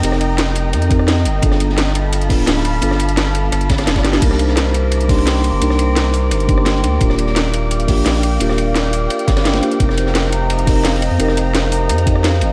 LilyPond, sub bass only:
\new Staff \with { instrumentName = "Sub bass" } { \clef bass \time 4/4 \key c \dorian \tempo 4 = 172 f,,2 f,4. g,,8 | g,,2~ g,,8 d,,8 d,,4 | g,,2 g,,4 f,,8 g,,8 | c,2.~ c,8. g,,16 |
c,2 g,,4. d,8 | ees,,2~ ees,,8 bes,,8 bes,,4 | ees,,2 r8 g,,4 r8 | f,,2.~ f,,8. f,16 |
f,,2 f,4. g,,8 | }